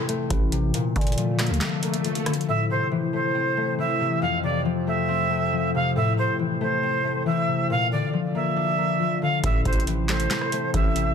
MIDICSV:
0, 0, Header, 1, 7, 480
1, 0, Start_track
1, 0, Tempo, 434783
1, 817, Time_signature, 4, 2, 24, 8
1, 12304, End_track
2, 0, Start_track
2, 0, Title_t, "Flute"
2, 0, Program_c, 0, 73
2, 2741, Note_on_c, 0, 76, 102
2, 2923, Note_off_c, 0, 76, 0
2, 2981, Note_on_c, 0, 72, 83
2, 3163, Note_off_c, 0, 72, 0
2, 3458, Note_on_c, 0, 72, 82
2, 4134, Note_off_c, 0, 72, 0
2, 4177, Note_on_c, 0, 76, 81
2, 4628, Note_off_c, 0, 76, 0
2, 4652, Note_on_c, 0, 77, 91
2, 4837, Note_off_c, 0, 77, 0
2, 4890, Note_on_c, 0, 74, 80
2, 5076, Note_off_c, 0, 74, 0
2, 5379, Note_on_c, 0, 76, 85
2, 6294, Note_off_c, 0, 76, 0
2, 6343, Note_on_c, 0, 77, 82
2, 6524, Note_off_c, 0, 77, 0
2, 6577, Note_on_c, 0, 76, 92
2, 6761, Note_off_c, 0, 76, 0
2, 6817, Note_on_c, 0, 72, 87
2, 7000, Note_off_c, 0, 72, 0
2, 7302, Note_on_c, 0, 72, 85
2, 7977, Note_off_c, 0, 72, 0
2, 8015, Note_on_c, 0, 76, 89
2, 8468, Note_off_c, 0, 76, 0
2, 8504, Note_on_c, 0, 77, 103
2, 8684, Note_off_c, 0, 77, 0
2, 8738, Note_on_c, 0, 74, 83
2, 8921, Note_off_c, 0, 74, 0
2, 9216, Note_on_c, 0, 76, 83
2, 10132, Note_off_c, 0, 76, 0
2, 10178, Note_on_c, 0, 77, 88
2, 10361, Note_off_c, 0, 77, 0
2, 10420, Note_on_c, 0, 76, 99
2, 10602, Note_off_c, 0, 76, 0
2, 10660, Note_on_c, 0, 72, 85
2, 10842, Note_off_c, 0, 72, 0
2, 11136, Note_on_c, 0, 72, 83
2, 11814, Note_off_c, 0, 72, 0
2, 11858, Note_on_c, 0, 76, 78
2, 12304, Note_off_c, 0, 76, 0
2, 12304, End_track
3, 0, Start_track
3, 0, Title_t, "Glass harmonica"
3, 0, Program_c, 1, 92
3, 2736, Note_on_c, 1, 72, 77
3, 2737, Note_on_c, 1, 57, 74
3, 2737, Note_on_c, 1, 64, 65
3, 4638, Note_off_c, 1, 57, 0
3, 4638, Note_off_c, 1, 64, 0
3, 4657, Note_on_c, 1, 57, 74
3, 4657, Note_on_c, 1, 65, 66
3, 6558, Note_off_c, 1, 65, 0
3, 6577, Note_on_c, 1, 64, 64
3, 8453, Note_off_c, 1, 72, 0
3, 8459, Note_off_c, 1, 57, 0
3, 8478, Note_off_c, 1, 64, 0
3, 8498, Note_on_c, 1, 74, 81
3, 8499, Note_on_c, 1, 58, 71
3, 8499, Note_on_c, 1, 65, 66
3, 10399, Note_off_c, 1, 58, 0
3, 10399, Note_off_c, 1, 65, 0
3, 10399, Note_off_c, 1, 74, 0
3, 10418, Note_on_c, 1, 57, 69
3, 10418, Note_on_c, 1, 64, 66
3, 10419, Note_on_c, 1, 72, 76
3, 12304, Note_off_c, 1, 57, 0
3, 12304, Note_off_c, 1, 64, 0
3, 12304, Note_off_c, 1, 72, 0
3, 12304, End_track
4, 0, Start_track
4, 0, Title_t, "Harp"
4, 0, Program_c, 2, 46
4, 0, Note_on_c, 2, 48, 78
4, 0, Note_on_c, 2, 52, 83
4, 0, Note_on_c, 2, 60, 99
4, 94, Note_on_c, 2, 57, 85
4, 322, Note_off_c, 2, 52, 0
4, 335, Note_on_c, 2, 52, 87
4, 560, Note_off_c, 2, 48, 0
4, 573, Note_on_c, 2, 48, 81
4, 633, Note_off_c, 2, 52, 0
4, 820, Note_on_c, 2, 46, 97
4, 873, Note_off_c, 2, 48, 0
4, 887, Note_off_c, 2, 57, 0
4, 1056, Note_on_c, 2, 50, 79
4, 1113, Note_off_c, 2, 46, 0
4, 1298, Note_on_c, 2, 53, 84
4, 1536, Note_on_c, 2, 58, 91
4, 1773, Note_on_c, 2, 62, 97
4, 2011, Note_off_c, 2, 58, 0
4, 2015, Note_on_c, 2, 58, 83
4, 2240, Note_off_c, 2, 53, 0
4, 2254, Note_on_c, 2, 53, 78
4, 2483, Note_off_c, 2, 50, 0
4, 2496, Note_on_c, 2, 50, 78
4, 2553, Note_off_c, 2, 53, 0
4, 2741, Note_on_c, 2, 45, 90
4, 2793, Note_off_c, 2, 50, 0
4, 2807, Note_off_c, 2, 58, 0
4, 2979, Note_on_c, 2, 48, 77
4, 3033, Note_off_c, 2, 45, 0
4, 3174, Note_off_c, 2, 60, 0
4, 3218, Note_on_c, 2, 52, 94
4, 3456, Note_on_c, 2, 57, 85
4, 3696, Note_on_c, 2, 60, 107
4, 3937, Note_off_c, 2, 57, 0
4, 3941, Note_on_c, 2, 57, 93
4, 4165, Note_off_c, 2, 52, 0
4, 4178, Note_on_c, 2, 52, 82
4, 4408, Note_off_c, 2, 48, 0
4, 4422, Note_on_c, 2, 48, 82
4, 4473, Note_off_c, 2, 52, 0
4, 4656, Note_on_c, 2, 41, 94
4, 4713, Note_off_c, 2, 48, 0
4, 4864, Note_off_c, 2, 62, 0
4, 4895, Note_on_c, 2, 48, 85
4, 5136, Note_on_c, 2, 53, 90
4, 5372, Note_off_c, 2, 57, 0
4, 5377, Note_on_c, 2, 57, 78
4, 5611, Note_off_c, 2, 60, 0
4, 5615, Note_on_c, 2, 60, 104
4, 5852, Note_off_c, 2, 57, 0
4, 5856, Note_on_c, 2, 57, 87
4, 6087, Note_off_c, 2, 53, 0
4, 6100, Note_on_c, 2, 53, 88
4, 6330, Note_off_c, 2, 48, 0
4, 6343, Note_on_c, 2, 48, 86
4, 6393, Note_off_c, 2, 53, 0
4, 6578, Note_on_c, 2, 45, 96
4, 6633, Note_off_c, 2, 41, 0
4, 6633, Note_off_c, 2, 48, 0
4, 6812, Note_on_c, 2, 48, 82
4, 6873, Note_off_c, 2, 45, 0
4, 7057, Note_on_c, 2, 52, 85
4, 7291, Note_off_c, 2, 57, 0
4, 7296, Note_on_c, 2, 57, 94
4, 7537, Note_off_c, 2, 60, 0
4, 7541, Note_on_c, 2, 60, 104
4, 7770, Note_off_c, 2, 57, 0
4, 7775, Note_on_c, 2, 57, 83
4, 8002, Note_off_c, 2, 52, 0
4, 8015, Note_on_c, 2, 52, 91
4, 8240, Note_off_c, 2, 48, 0
4, 8253, Note_on_c, 2, 48, 81
4, 8313, Note_off_c, 2, 52, 0
4, 8499, Note_on_c, 2, 46, 99
4, 8553, Note_off_c, 2, 48, 0
4, 8565, Note_off_c, 2, 57, 0
4, 8736, Note_on_c, 2, 50, 80
4, 8793, Note_off_c, 2, 46, 0
4, 8979, Note_on_c, 2, 53, 86
4, 9216, Note_on_c, 2, 58, 92
4, 9454, Note_on_c, 2, 62, 102
4, 9691, Note_off_c, 2, 58, 0
4, 9696, Note_on_c, 2, 58, 83
4, 9921, Note_off_c, 2, 53, 0
4, 9934, Note_on_c, 2, 53, 80
4, 10164, Note_off_c, 2, 50, 0
4, 10177, Note_on_c, 2, 50, 84
4, 10233, Note_off_c, 2, 53, 0
4, 10421, Note_on_c, 2, 45, 91
4, 10473, Note_off_c, 2, 50, 0
4, 10487, Note_off_c, 2, 58, 0
4, 10658, Note_on_c, 2, 48, 80
4, 10713, Note_off_c, 2, 45, 0
4, 10853, Note_off_c, 2, 60, 0
4, 10899, Note_on_c, 2, 52, 91
4, 11136, Note_on_c, 2, 57, 89
4, 11376, Note_on_c, 2, 60, 110
4, 11616, Note_off_c, 2, 57, 0
4, 11620, Note_on_c, 2, 57, 97
4, 11842, Note_off_c, 2, 52, 0
4, 11855, Note_on_c, 2, 52, 84
4, 12085, Note_off_c, 2, 48, 0
4, 12099, Note_on_c, 2, 48, 80
4, 12153, Note_off_c, 2, 52, 0
4, 12304, Note_off_c, 2, 48, 0
4, 12304, Note_off_c, 2, 57, 0
4, 12304, Note_off_c, 2, 60, 0
4, 12304, Note_off_c, 2, 62, 0
4, 12304, End_track
5, 0, Start_track
5, 0, Title_t, "808-style bass"
5, 0, Program_c, 3, 38
5, 337, Note_on_c, 3, 33, 106
5, 798, Note_off_c, 3, 33, 0
5, 1058, Note_on_c, 3, 46, 106
5, 1658, Note_on_c, 3, 38, 101
5, 1674, Note_off_c, 3, 46, 0
5, 1777, Note_off_c, 3, 38, 0
5, 10418, Note_on_c, 3, 33, 109
5, 10648, Note_off_c, 3, 33, 0
5, 10659, Note_on_c, 3, 33, 104
5, 11349, Note_off_c, 3, 33, 0
5, 11857, Note_on_c, 3, 33, 108
5, 12304, Note_off_c, 3, 33, 0
5, 12304, End_track
6, 0, Start_track
6, 0, Title_t, "Swell"
6, 0, Program_c, 4, 103
6, 818, Note_on_c, 4, 60, 89
6, 2738, Note_off_c, 4, 60, 0
6, 12304, End_track
7, 0, Start_track
7, 0, Title_t, "Drums"
7, 98, Note_on_c, 9, 42, 84
7, 208, Note_off_c, 9, 42, 0
7, 336, Note_on_c, 9, 42, 74
7, 337, Note_on_c, 9, 36, 99
7, 447, Note_off_c, 9, 36, 0
7, 447, Note_off_c, 9, 42, 0
7, 577, Note_on_c, 9, 42, 77
7, 687, Note_off_c, 9, 42, 0
7, 818, Note_on_c, 9, 42, 84
7, 928, Note_off_c, 9, 42, 0
7, 1058, Note_on_c, 9, 36, 92
7, 1058, Note_on_c, 9, 42, 48
7, 1119, Note_off_c, 9, 42, 0
7, 1119, Note_on_c, 9, 42, 61
7, 1169, Note_off_c, 9, 36, 0
7, 1178, Note_off_c, 9, 42, 0
7, 1178, Note_on_c, 9, 42, 70
7, 1238, Note_off_c, 9, 42, 0
7, 1238, Note_on_c, 9, 42, 82
7, 1299, Note_off_c, 9, 42, 0
7, 1299, Note_on_c, 9, 42, 76
7, 1410, Note_off_c, 9, 42, 0
7, 1537, Note_on_c, 9, 46, 61
7, 1538, Note_on_c, 9, 42, 80
7, 1539, Note_on_c, 9, 37, 72
7, 1539, Note_on_c, 9, 38, 98
7, 1542, Note_on_c, 9, 39, 75
7, 1618, Note_off_c, 9, 42, 0
7, 1618, Note_on_c, 9, 42, 64
7, 1647, Note_off_c, 9, 46, 0
7, 1649, Note_off_c, 9, 37, 0
7, 1649, Note_off_c, 9, 38, 0
7, 1653, Note_off_c, 9, 39, 0
7, 1697, Note_off_c, 9, 42, 0
7, 1697, Note_on_c, 9, 42, 46
7, 1777, Note_off_c, 9, 42, 0
7, 1777, Note_on_c, 9, 38, 117
7, 1777, Note_on_c, 9, 42, 75
7, 1780, Note_on_c, 9, 39, 88
7, 1887, Note_off_c, 9, 38, 0
7, 1888, Note_off_c, 9, 42, 0
7, 1891, Note_off_c, 9, 39, 0
7, 2017, Note_on_c, 9, 42, 74
7, 2128, Note_off_c, 9, 42, 0
7, 2137, Note_on_c, 9, 42, 73
7, 2248, Note_off_c, 9, 42, 0
7, 2258, Note_on_c, 9, 42, 61
7, 2368, Note_off_c, 9, 42, 0
7, 2377, Note_on_c, 9, 42, 61
7, 2488, Note_off_c, 9, 42, 0
7, 2498, Note_on_c, 9, 37, 94
7, 2498, Note_on_c, 9, 42, 74
7, 2498, Note_on_c, 9, 46, 56
7, 2578, Note_off_c, 9, 42, 0
7, 2578, Note_on_c, 9, 42, 59
7, 2608, Note_off_c, 9, 37, 0
7, 2608, Note_off_c, 9, 46, 0
7, 2658, Note_off_c, 9, 42, 0
7, 2658, Note_on_c, 9, 42, 43
7, 2769, Note_off_c, 9, 42, 0
7, 10417, Note_on_c, 9, 42, 87
7, 10418, Note_on_c, 9, 36, 127
7, 10528, Note_off_c, 9, 42, 0
7, 10529, Note_off_c, 9, 36, 0
7, 10658, Note_on_c, 9, 42, 48
7, 10659, Note_on_c, 9, 36, 96
7, 10738, Note_off_c, 9, 42, 0
7, 10738, Note_on_c, 9, 42, 65
7, 10769, Note_off_c, 9, 36, 0
7, 10818, Note_off_c, 9, 42, 0
7, 10818, Note_on_c, 9, 42, 84
7, 10899, Note_off_c, 9, 42, 0
7, 10899, Note_on_c, 9, 42, 80
7, 11010, Note_off_c, 9, 42, 0
7, 11138, Note_on_c, 9, 42, 50
7, 11139, Note_on_c, 9, 38, 100
7, 11142, Note_on_c, 9, 39, 79
7, 11248, Note_off_c, 9, 42, 0
7, 11249, Note_off_c, 9, 38, 0
7, 11253, Note_off_c, 9, 39, 0
7, 11258, Note_on_c, 9, 42, 82
7, 11368, Note_off_c, 9, 42, 0
7, 11378, Note_on_c, 9, 38, 114
7, 11378, Note_on_c, 9, 42, 75
7, 11381, Note_on_c, 9, 39, 96
7, 11488, Note_off_c, 9, 38, 0
7, 11489, Note_off_c, 9, 42, 0
7, 11492, Note_off_c, 9, 39, 0
7, 11497, Note_on_c, 9, 37, 93
7, 11608, Note_off_c, 9, 37, 0
7, 11618, Note_on_c, 9, 42, 87
7, 11728, Note_off_c, 9, 42, 0
7, 11857, Note_on_c, 9, 36, 103
7, 11857, Note_on_c, 9, 42, 73
7, 11967, Note_off_c, 9, 36, 0
7, 11967, Note_off_c, 9, 42, 0
7, 12098, Note_on_c, 9, 42, 79
7, 12208, Note_off_c, 9, 42, 0
7, 12304, End_track
0, 0, End_of_file